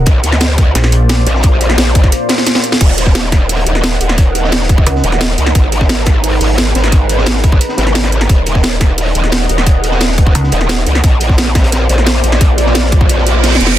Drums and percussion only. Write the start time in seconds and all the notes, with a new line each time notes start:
0.06 kick, closed hi-hat
0.23 closed hi-hat
0.32 snare
0.40 snare, closed hi-hat
0.58 kick, closed hi-hat
0.75 snare, closed hi-hat, open hi-hat
0.84 snare
0.92 closed hi-hat
1.09 snare, closed hi-hat
1.17 closed hi-hat
1.27 closed hi-hat
1.35 snare
1.43 kick, closed hi-hat
1.61 closed hi-hat
1.69 snare
1.78 snare, closed hi-hat
1.95 kick, closed hi-hat
2.04 kick, snare
2.12 closed hi-hat
2.29 snare, closed hi-hat
2.38 snare, closed hi-hat
2.46 snare, closed hi-hat
2.55 snare, closed hi-hat
2.63 closed hi-hat
2.72 snare, closed hi-hat
2.81 kick, closed hi-hat, crash
2.98 closed hi-hat
3.06 kick, snare
3.15 snare, closed hi-hat
3.32 kick, snare, closed hi-hat
3.49 closed hi-hat, open hi-hat
3.67 closed hi-hat
3.75 snare
3.83 snare, closed hi-hat
3.93 closed hi-hat
4.00 closed hi-hat
4.09 snare
4.18 kick, closed hi-hat
4.35 closed hi-hat
4.44 snare
4.52 snare, closed hi-hat
4.61 snare
4.69 kick, closed hi-hat
4.78 kick
4.87 closed hi-hat
4.95 snare
5.04 closed hi-hat
5.12 snare
5.21 snare, closed hi-hat
5.38 closed hi-hat
5.47 snare
5.55 kick, closed hi-hat
5.72 closed hi-hat
5.81 kick, snare
5.89 snare, closed hi-hat
6.06 kick, snare, closed hi-hat
6.24 closed hi-hat, open hi-hat
6.41 closed hi-hat, open hi-hat
6.58 snare, closed hi-hat
6.75 snare, closed hi-hat
6.84 snare, closed hi-hat
6.92 kick, closed hi-hat
7.09 closed hi-hat
7.18 snare
7.26 snare, closed hi-hat
7.35 snare
7.44 kick, closed hi-hat
7.52 kick
7.61 closed hi-hat
7.69 snare
7.78 snare, closed hi-hat
7.87 snare
7.95 snare, closed hi-hat
8.03 snare, closed hi-hat
8.12 closed hi-hat
8.21 snare, closed hi-hat
8.29 kick, closed hi-hat
8.46 closed hi-hat
8.55 kick, snare
8.63 snare, closed hi-hat
8.81 kick, snare, closed hi-hat
8.98 closed hi-hat, open hi-hat
9.15 closed hi-hat
9.24 snare
9.32 snare, closed hi-hat
9.41 closed hi-hat
9.49 closed hi-hat
9.58 snare
9.67 kick, closed hi-hat
9.84 closed hi-hat
9.92 snare
10.01 snare, closed hi-hat
10.09 snare
10.18 kick, closed hi-hat
10.27 kick
10.35 closed hi-hat
10.44 snare
10.52 closed hi-hat
10.61 snare
10.69 snare, closed hi-hat
10.87 closed hi-hat
10.95 snare
11.04 kick, closed hi-hat
11.20 closed hi-hat
11.29 kick, snare
11.38 snare, closed hi-hat
11.55 kick, snare, closed hi-hat
11.63 snare, closed hi-hat
11.72 snare, closed hi-hat
11.89 closed hi-hat
11.98 snare
12.07 snare, closed hi-hat
12.15 closed hi-hat
12.24 closed hi-hat
12.32 snare
12.41 kick, closed hi-hat
12.58 closed hi-hat
12.66 snare
12.75 snare, closed hi-hat
12.84 snare
12.92 kick, closed hi-hat
13.01 kick
13.09 closed hi-hat
13.18 snare
13.27 closed hi-hat
13.43 snare, closed hi-hat
13.52 snare, closed hi-hat
13.55 snare
13.61 snare, closed hi-hat
13.67 snare